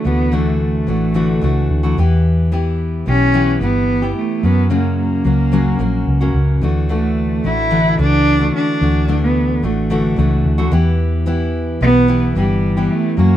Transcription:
0.04 D2 E3 A3 B3 D4 F#4
0.32 D3 E3 A3 D4 F#4
0.62 A3
0.87 A1 E3 A3 D4 F#4
1.14 D3 E3 A3 D4 F#4
1.41 C#2 E3 A3 D4 F#4
1.70 D2
1.83 D3 E3 A3 D4 F#4
1.97 E2 E3 B3 E4 G4
2.52 E3 B3 E4 G4
3.06 B1 E3 B3 C#4 E4 G4
3.34 E3 B3 E4 G4
3.61 G1 E3 B3 E4 G4
4.02 E3 B3 E4 G4
4.17 A3
4.43 F#2 F#3 A#3 B3 C#4 F#4
4.70 F#2 C#3 F#3 A#3 C#4 F#4
5.00 A#3
5.24 C#2 F#3 A#3 C#4 F#4
5.52 F#2 C#3 F#3 A#3 C#4 F#4
5.79 A#1 F#3 A#3 C#4 F#4
6.07 C#2
6.21 F#2 C#3 F#3 A#3 C#4 F#4
6.34 C#2
6.61 D2 E3 A3 D4 F#4
6.89 D3 E3 A3 D4 F#4
7.44 A1 E3 A3 D4 E4 F#4
7.71 D3 E3 A3 D4 F#4
7.98 C#2 E3 A3 D4 F#4
8.39 D3 E3 A3 D4 F#4
8.56 D4
8.81 D2 E3 A3 D4 F#4
9.08 D3 E3 A3 D4 F#4
9.24 B3
9.62 A1 E3 A3 D4 F#4
9.90 D3 E3 A3 D4 F#4
10.16 C#2 E3 A3 D4 F#4
10.45 D2
10.58 D3 E3 A3 D4 F#4
10.71 E2 E3 B3 E4 G4
11.26 E3 B3 E4 G4
11.81 B1 E3 B3 E4 G4
12.08 E3 B3 E4 G4
12.35 G1 E3 G3 B3 E4 G4
12.77 E3 B3 E4 G4
12.92 A3
13.17 F#2 F#3 A#3 C#4 F#4

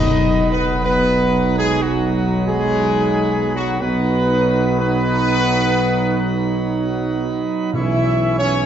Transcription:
Already playing: B1 B2 F#3 B3 D#4 B4 D#5
0.51 B3 B4
0.84 B3 B4
1.57 G#3 G#4
1.82 F#3 F#4
2.47 G#3 G#4
3.55 F#3 F#4
3.80 B1 F#3 B3 D#4 B4
4.79 B3 B4
7.73 B1 B2 E3 C#4 E4 C#5 E5
8.38 C#4 C#5

